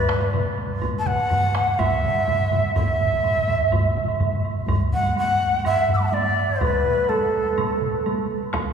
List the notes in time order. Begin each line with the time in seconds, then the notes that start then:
Already playing: B4
0.09 taiko rim, taiko high
0.21 taiko high, high woodblock
0.33 taiko low-mid, taiko mid, taiko high, high woodblock
0.47 taiko high
0.57 taiko high, high woodblock
0.70 taiko high
0.82 taiko, taiko high, high woodblock
0.95 A5, taiko high
1.06 F#5, taiko low-mid, taiko mid, taiko high
1.20 taiko high
1.30 taiko low-mid, taiko mid, taiko high, high woodblock
1.44 taiko high
1.55 taiko rim, taiko high, high woodblock
1.67 taiko high
1.79 E5, taiko, taiko low-mid, taiko mid, taiko high, high woodblock
1.92 taiko low-mid, taiko mid, taiko high
2.02 taiko low-mid, taiko mid, taiko high
2.15 taiko high, high woodblock
2.27 taiko low-mid, taiko mid, taiko high, high woodblock
2.39 taiko high
2.51 taiko low-mid, taiko mid, taiko high, high woodblock
2.64 taiko high
2.75 E5, taiko, taiko low-mid, taiko mid, taiko high, high woodblock
2.87 taiko high
2.99 taiko low-mid, taiko mid, taiko high
3.12 taiko low-mid, taiko mid, taiko high
3.23 taiko low-mid, taiko mid, taiko high, high woodblock
3.35 taiko low-mid, taiko mid, taiko high
3.47 taiko low-mid, taiko mid, taiko high, high woodblock
3.59 taiko low-mid, taiko mid, taiko high
3.71 taiko, taiko low-mid, taiko mid, taiko high, high woodblock
3.83 taiko high
3.95 taiko low-mid, taiko mid, taiko high
4.08 taiko high, high woodblock
4.20 taiko low-mid, taiko mid, taiko high, high woodblock
4.32 taiko low-mid, taiko mid, taiko high
4.45 high woodblock
4.56 taiko high
4.68 taiko, taiko low-mid, taiko high, high woodblock
4.92 F#5, taiko low-mid
5.04 taiko high
5.16 F#5, taiko high, high woodblock
5.52 taiko high
5.64 E5, taiko low-mid, taiko high, high woodblock
5.89 taiko low-mid
5.94 D6 E6
5.99 B5, taiko high
6.03 F#5 A5
6.11 D5 E5, taiko high, high woodblock
6.49 taiko high
6.61 B4, taiko, taiko mid, taiko high, high woodblock
6.85 taiko mid
6.97 taiko high
7.09 A4, taiko high, high woodblock
7.45 taiko high
7.58 taiko mid, taiko high, high woodblock
7.82 taiko mid
7.94 taiko high
8.06 taiko high, high woodblock
8.53 taiko rim, taiko, taiko high, high woodblock